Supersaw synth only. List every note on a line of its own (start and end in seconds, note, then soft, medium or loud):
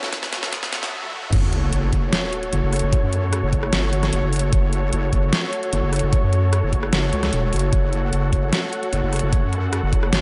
0.00 1.29 F#3 medium
0.00 1.29 F#4 medium
0.00 1.29 A4 medium
0.00 1.31 E5 medium
1.33 10.21 F#4 medium
1.33 10.21 A4 medium
1.33 7.71 C#5 medium
7.73 10.21 F#5 medium